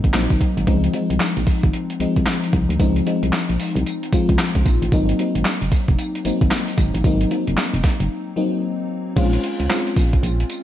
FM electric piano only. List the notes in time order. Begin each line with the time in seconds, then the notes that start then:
Already playing: F#3 A#3 C4 D#4
0.14 F#3 A#3 C4 D#4
0.67 F3 G#3 C4 D#4
0.94 F3 G#3 C4 D#4
2.00 F3 G#3 C4 D#4
2.80 F3 G#3 C4 D#4
3.06 F3 G#3 C4 D#4
4.13 F3 G#3 C4 F4
4.93 F#3 A#3 C4 D#4
5.19 F#3 A#3 C4 D#4
6.25 F#3 A#3 C4 D#4
7.05 F#3 A#3 C4 D#4
7.31 F#3 A#3 C4 D#4
8.36 F#3 A#3 C4 D#4
9.16 G#3 C4 C#4 F4
9.69 G#3 C4 C#4 F4